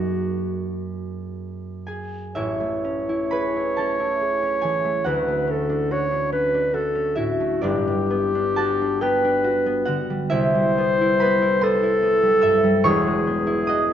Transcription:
Already playing: harp F#2 A#3 D#4 F#4 G#4, clarinet F#4
1.87 harp G#4 G#5
2.35 harp A1 A2 E4 E5, clarinet C#5
2.60 harp A3
2.84 harp C#4
3.09 harp E4
3.31 harp G#4 B4 B5
3.56 harp E4
3.77 harp C#4 A4 A5
4.00 harp E4
4.21 harp G#4
4.43 harp C#4
4.61 harp E3 G#4 G#5
4.85 harp A3
5.04 harp D2 F#4 F#5, clarinet B4
5.28 harp A3
5.47 harp C#4, clarinet A4
5.70 harp D4
5.91 harp F#4, clarinet C#5
6.11 harp D4
6.32 harp C#4, clarinet B4
6.54 harp D4
6.74 harp F#4, clarinet A4
6.95 harp C#4
7.15 harp A2 E4 E5, clarinet F#4
7.40 harp A3
7.61 harp G1 G2 D4 D5, clarinet G4
7.87 harp G3
8.10 harp B3
8.35 harp D4
8.56 harp F#4 A4 A5
8.81 harp D4
9.01 harp B3 G4 G5, clarinet B4
9.24 harp D4
9.44 harp F#4
9.66 harp B3
9.85 harp D3 F#4 F#5
10.10 harp G3
10.30 harp C2 E4 E5, clarinet C5
10.55 harp G3
10.78 harp B3
11.01 harp E4
11.20 harp B3 B4 B5
11.42 harp E4
11.61 harp B3 C5 C6, clarinet A4
11.83 harp E4
12.03 harp B3
12.23 harp G3
12.42 harp G2 E5 E6
12.64 harp G3
12.84 harp E1 E2 C#5 C#6, clarinet G#4
13.07 harp G#3
13.27 harp B3
13.47 harp E4
13.67 harp F#4 D#5 D#6

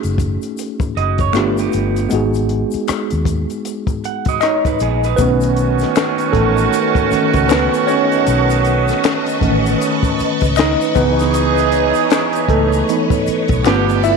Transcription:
Already playing: tine electric piano A3 C#4 D#4 F#4 G#4
0.03 fingered electric bass F#1, closed hi-hat, shaker
0.18 kick, closed hi-hat, shaker
0.42 closed hi-hat, shaker
0.58 closed hi-hat, shaker
0.80 kick, closed hi-hat, shaker
0.97 fingered electric bass F#1, clean electric guitar F#4 D#5, closed hi-hat
1.18 clean electric guitar C#5, kick, closed hi-hat, shaker
1.33 fingered electric bass G1, tine electric piano A3 B3 D4 F4 G4, clean electric guitar D4 B4, finger snap, cross-stick, closed hi-hat, shaker
1.58 clean electric guitar B3 G4, closed hi-hat, shaker
1.72 fingered electric bass G1, closed hi-hat, shaker
1.96 cross-stick, closed hi-hat, shaker
2.09 fingered electric bass G#1, tine electric piano G#3 B3 D#4, closed hi-hat, shaker
2.13 tine electric piano F#4 G#4
2.34 closed hi-hat, shaker
2.49 closed hi-hat
2.71 muted fingered electric bass stroke, closed hi-hat, shaker
2.88 finger snap, muted fingered electric bass stroke, cross-stick, closed hi-hat, shaker
3.10 fingered electric bass D#2, closed hi-hat, shaker
3.25 kick, closed hi-hat, shaker
3.50 closed hi-hat, shaker
3.65 closed hi-hat, shaker
3.87 kick, closed hi-hat, shaker
4.04 clean electric guitar F#5, closed hi-hat
4.25 clean electric guitar F#4 D#5, kick, closed hi-hat, shaker
4.41 tine electric piano D#4 D#5, clean electric guitar C#5, finger snap, cross-stick, closed hi-hat, shaker
4.65 clean electric guitar D#4 B4, kick, closed hi-hat, shaker
4.79 fingered electric bass A#1, clean electric guitar B3 G#4, closed hi-hat, shaker
5.04 clean electric guitar D#4 B4, cross-stick, closed hi-hat, shaker
5.16 fingered electric bass B1, horn section D#3 C#4 F#4, tine electric piano D#3 A3 C#4 B4, string machine B4 D#5 A5 C#6, kick, closed hi-hat, shaker
5.20 tine electric piano B3
5.41 closed hi-hat, shaker
5.56 closed hi-hat, shaker
5.79 snare, closed hi-hat, shaker
5.96 finger snap, snare, closed hi-hat, shaker
5.98 finger snap
6.18 closed hi-hat, shaker
6.33 fingered electric bass A1, tine electric piano A3 A4, kick, closed hi-hat
6.58 closed hi-hat, shaker
6.73 closed hi-hat, shaker
6.95 kick, closed hi-hat, shaker
7.11 tine electric piano D#3 A3 C#4, muted fingered electric bass stroke, closed hi-hat, shaker
7.33 fingered electric bass C#2, kick, closed hi-hat, shaker
7.49 tine electric piano B3 B4, finger snap, snare, closed hi-hat, shaker
7.52 finger snap
7.74 closed hi-hat, shaker
7.87 tine electric piano C#4 C#5, closed hi-hat, shaker
8.12 closed hi-hat, shaker
8.27 fingered electric bass B1, closed hi-hat, shaker
8.50 closed hi-hat, shaker
8.64 closed hi-hat, shaker
8.88 snare, closed hi-hat, shaker
9.04 finger snap, snare, closed hi-hat, shaker
9.06 finger snap
9.26 closed hi-hat, shaker
9.41 fingered electric bass A1, tine electric piano D#3 A3 C#4, kick, closed hi-hat
9.66 closed hi-hat, shaker
9.81 closed hi-hat, shaker
10.03 kick, closed hi-hat, shaker
10.19 muted fingered electric bass stroke, closed hi-hat, shaker
10.41 fingered electric bass C#2, kick, closed hi-hat, shaker
10.56 tine electric piano D#4 D#5, finger snap, snare, closed hi-hat, shaker
10.60 finger snap
10.81 closed hi-hat, shaker
10.95 fingered electric bass C#2, horn section E3 D#4 G#4, tine electric piano E3 B3 D#4 B4, string machine C#5, kick, closed hi-hat, shaker
11.19 snare, closed hi-hat, shaker
11.34 closed hi-hat, shaker
11.57 closed hi-hat, shaker
11.72 closed hi-hat, shaker
11.94 closed hi-hat, shaker
12.10 finger snap, snare, closed hi-hat, shaker
12.33 closed hi-hat, shaker
12.49 fingered electric bass C#2, tine electric piano A3 A4, kick, closed hi-hat
12.73 closed hi-hat, shaker
12.89 tine electric piano E3 B3 D#4, closed hi-hat, shaker
13.10 kick, closed hi-hat, shaker
13.26 muted fingered electric bass stroke, closed hi-hat, shaker
13.48 fingered electric bass B1, kick, closed hi-hat, shaker
13.64 fingered electric bass G1, horn section D3 B3 G4, tine electric piano A3 B3 F4 B4, string machine A4 D5 A5 B5, finger snap, snare, closed hi-hat, shaker
13.68 finger snap
13.89 closed hi-hat, shaker
14.04 tine electric piano E4 E5, closed hi-hat, shaker

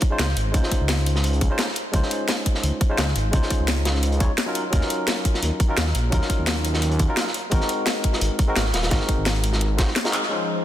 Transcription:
Already playing: tine electric piano C5
0.01 kick, closed hi-hat
0.10 tine electric piano G#3 C#4 D#4 F4 C5
0.19 detuned saw bass C#2, snare, closed hi-hat
0.28 snare
0.37 detuned saw bass G#1, closed hi-hat
0.52 detuned saw bass C#2, tine electric piano G#3 C#4 D#4 F4, kick, closed hi-hat
0.56 tine electric piano C5
0.63 snare
0.72 kick, closed hi-hat
0.81 detuned saw bass C#2
0.88 snare, closed hi-hat
0.98 closed hi-hat
1.06 closed hi-hat
1.16 snare
1.24 closed hi-hat
1.33 closed hi-hat
1.41 kick, closed hi-hat
1.49 tine electric piano G#3 C#4 D#4 F4 C5
1.58 snare, closed hi-hat
1.68 snare
1.76 closed hi-hat
1.92 detuned saw bass C#2, tine electric piano G#3 C#4 D#4 F4, kick, closed hi-hat
1.96 tine electric piano C5
2.03 snare
2.11 closed hi-hat
2.29 snare, closed hi-hat
2.46 kick, closed hi-hat
2.55 snare
2.63 detuned saw bass C#2, closed hi-hat
2.81 kick, closed hi-hat
2.89 tine electric piano G#3 C#4 D#4 F4 C5
2.98 detuned saw bass C#2, snare, closed hi-hat
3.07 snare
3.16 detuned saw bass G#1, closed hi-hat
3.31 detuned saw bass C#2, tine electric piano G#3 C#4 D#4 F4, kick, closed hi-hat
3.35 tine electric piano C5
3.42 snare
3.50 kick, closed hi-hat
3.60 detuned saw bass C#2
3.68 snare, closed hi-hat
3.85 snare, closed hi-hat
3.95 snare
4.03 closed hi-hat
4.12 closed hi-hat
4.19 tine electric piano G#3 C#4 D#4 F4 C#5, kick, closed hi-hat
4.38 snare, closed hi-hat
4.46 tine electric piano F#3 C#4 D#4 F4 A#4
4.55 closed hi-hat
4.71 detuned saw bass D#2, tine electric piano F#3 C#4 D#4 F4, kick, closed hi-hat
4.75 tine electric piano A#4
4.81 snare
4.90 closed hi-hat
5.07 snare, closed hi-hat
5.25 kick, closed hi-hat
5.34 snare
5.43 detuned saw bass D#2, closed hi-hat
5.60 kick, closed hi-hat
5.68 tine electric piano F#3 C#4 D#4 F4 A#4
5.77 detuned saw bass D#2, snare, closed hi-hat
5.87 snare
5.95 detuned saw bass A#1, closed hi-hat
6.10 detuned saw bass D#2, tine electric piano F#3 C#4 D#4 F4, kick, closed hi-hat
6.14 tine electric piano A#4
6.22 snare
6.30 kick, closed hi-hat
6.39 detuned saw bass D#2
6.47 snare, closed hi-hat
6.57 closed hi-hat
6.65 closed hi-hat
6.74 snare
6.82 closed hi-hat
6.91 closed hi-hat
6.99 kick, closed hi-hat
7.08 tine electric piano F#3 C#4 D#4 F4 A#4
7.17 snare, closed hi-hat
7.27 snare
7.34 closed hi-hat
7.50 detuned saw bass G#1, tine electric piano G#3 C4 D#4 F#4, kick, closed hi-hat
7.54 tine electric piano A#4
7.61 snare
7.69 closed hi-hat
7.86 snare, closed hi-hat
8.04 kick, closed hi-hat
8.13 snare
8.21 detuned saw bass G#1, closed hi-hat
8.39 kick, closed hi-hat
8.47 tine electric piano G#3 C4 D#4 F#4 A#4
8.56 detuned saw bass G#1, snare, closed hi-hat
8.65 snare
8.73 detuned saw bass D#1, snare, closed hi-hat
8.83 snare, closed hi-hat
8.89 detuned saw bass G#1, tine electric piano G#3 C4 D#4 F#4, kick, snare, closed hi-hat
8.94 tine electric piano A#4
9.00 snare
9.08 kick, closed hi-hat
9.18 detuned saw bass G#1
9.26 snare, closed hi-hat
9.36 closed hi-hat
9.44 closed hi-hat
9.53 snare
9.61 closed hi-hat
9.77 tine electric piano G#3 C4 D#4 F#4 C5, kick, snare, closed hi-hat
9.88 snare
9.96 snare, closed hi-hat
10.04 tine electric piano G#3 C4 D#4 F#4 A#4, snare, closed hi-hat
10.13 clap, closed hi-hat
10.23 snare
10.29 analog synth pad F3 C#4 C5 D#5, tine electric piano G#3 C#4 D#4 F4
10.33 tine electric piano C5

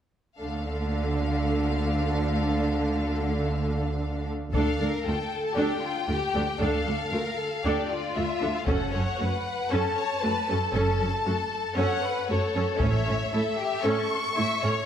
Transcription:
0.39 double bass section D2, cello section D3, viola section A3 D4, violin section A4 F5
4.53 double bass section D2, cello section D2, viola section D4 A4, violin section A4 F5, taiko
4.80 cello section D2, viola section D4 A4, violin section A#4
5.06 cello section D2, viola section A3 F4, violin section A4 G5
5.46 violin section A5
5.56 cello section D2, viola section D4 A4, violin section G4 G5
5.82 violin section F4
6.08 cello section D2, viola section A3 F4, violin section G4
6.35 cello section D2, viola section D4 A4
6.59 double bass section D2, cello section D2, viola section D4 A4, violin section A4 F5
6.86 cello section D2, viola section D4 A4
7.11 cello section D2, viola section A3 F4, violin section A#4
7.37 violin section A4
7.64 cello section D2, viola section D4 A4, violin section G4 D5
7.90 violin section F4
8.16 cello section D2, viola section A3 F4, violin section E5
8.41 cello section D2, viola section D4 A4
8.56 violin section F5
8.67 double bass section F#1, cello section F#2, viola section C#4 A4, violin section A4 F#5, taiko
8.92 cello section F#2, viola section C#4 A4, violin section C#5
9.19 cello section F#2, viola section A3 F#4, violin section B4
9.70 cello section F#2, viola section C#4 A4, violin section A4 A5
9.97 violin section C#5
10.23 cello section F#2, viola section A3 F#4, violin section B4
10.49 cello section F#2, viola section C#4 A4, violin section A4
10.74 double bass section F#1, cello section F#2, viola section C#4 A4, violin section A5
11.00 cello section F#2, viola section C#4 A4
11.26 cello section F#2, viola section A3 F#4, violin section A4
11.77 cello section F#2, viola section C#4 A4, violin section C#5 F#5
12.04 violin section B4
12.29 cello section F#2, viola section A3 F#4, violin section A4 C#5
12.56 cello section F#2, viola section C#4 A4
12.80 double bass section A1, cello section A2, viola section C#4 A4, violin section C#5 E5, taiko
13.06 cello section A2, viola section C#4 A4
13.33 cello section A2, viola section A3 E4, violin section A4
13.59 violin section G4
13.84 cello section A2, viola section C#4 A4, violin section A4 C#6
14.36 cello section A2, viola section A3 E4, violin section E5
14.62 cello section A2, viola section C#4 A4, violin section C#5

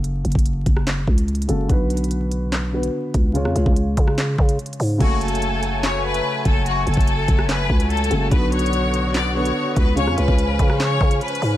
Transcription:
Already playing: 808-style bass F#1, grand piano C#3 F#4 G#4 A4
0.04 closed hi-hat
0.25 808-style bass F#1, closed hi-hat
0.32 808-style bass F#1, kick, closed hi-hat
0.39 closed hi-hat
0.45 closed hi-hat
0.66 808-style bass F#1, kick, closed hi-hat
0.77 cross-stick
0.87 snare, clap
1.07 808-style bass C#2, kick
1.18 closed hi-hat
1.28 closed hi-hat
1.35 closed hi-hat
1.42 closed hi-hat
1.48 808-style bass F#1, grand piano C#3 G#3 F#4 A4, closed hi-hat
1.68 808-style bass B1, grand piano D3 B3 F#4 B4, kick, closed hi-hat
1.90 closed hi-hat
1.97 closed hi-hat
2.04 closed hi-hat
2.11 closed hi-hat
2.31 closed hi-hat
2.52 snare, clap
2.73 grand piano D3 B3 F#4 B4
2.83 closed hi-hat
3.14 808-style bass C#2, kick, closed hi-hat
3.33 grand piano C#3 G#3 F4 C#5, closed hi-hat
3.45 808-style bass F2, cross-stick
3.56 808-style bass C#2, closed hi-hat
3.66 808-style bass C#2, kick
3.76 closed hi-hat
3.97 808-style bass C#3, kick, closed hi-hat
4.07 cross-stick
4.18 snare, clap
4.38 808-style bass C#3, kick
4.49 closed hi-hat
4.59 closed hi-hat
4.66 closed hi-hat
4.73 closed hi-hat
4.80 808-style bass G#2, open hi-hat
4.98 808-style bass F#1, grand piano C#3 A3 F#4 A4, accordion F#3 A3 G#5, violin section F#4, kick, closed hi-hat, crash
5.21 violin section A4, closed hi-hat
5.28 closed hi-hat
5.35 closed hi-hat
5.42 closed hi-hat
5.63 closed hi-hat
5.83 violin section C#5, snare, clap
6.04 violin section B4
6.14 closed hi-hat
6.45 808-style bass F#1, violin section A4, kick, closed hi-hat
6.66 violin section F#4, closed hi-hat
6.87 808-style bass F#1, violin section A4, closed hi-hat
6.94 808-style bass F#1, kick, closed hi-hat
7.01 closed hi-hat
7.07 closed hi-hat
7.28 808-style bass F#1, kick, closed hi-hat
7.38 cross-stick
7.49 violin section B4, snare, clap
7.70 808-style bass C#2, kick
7.80 closed hi-hat
7.90 violin section A4, closed hi-hat
7.97 closed hi-hat
8.04 closed hi-hat
8.10 808-style bass F#1, grand piano C#3 G#3 F#4 A4, closed hi-hat
8.30 808-style bass B1, grand piano D3 B3 F#4 B4, accordion D3 B3 F#4, violin section B4, kick, closed hi-hat
8.52 violin section C#5, closed hi-hat
8.59 closed hi-hat
8.66 closed hi-hat
8.73 closed hi-hat
8.94 closed hi-hat
9.14 violin section D5, snare, clap
9.35 grand piano D3 B3 F#4 B4, violin section C#5
9.45 closed hi-hat
9.76 808-style bass C#2, violin section B4, kick, closed hi-hat
9.95 grand piano C#3 G#3 F4 C#5, accordion F3 C#4, violin section C#5, closed hi-hat
10.07 808-style bass F2, cross-stick
10.18 808-style bass C#2, violin section B4, closed hi-hat
10.28 808-style bass C#2, kick
10.38 closed hi-hat
10.59 808-style bass C#3, kick, closed hi-hat
10.70 cross-stick
10.80 violin section C#5, snare, clap
11.01 808-style bass C#3, kick
11.11 closed hi-hat
11.21 violin section B4, closed hi-hat
11.28 closed hi-hat
11.35 closed hi-hat
11.42 808-style bass G#2, open hi-hat

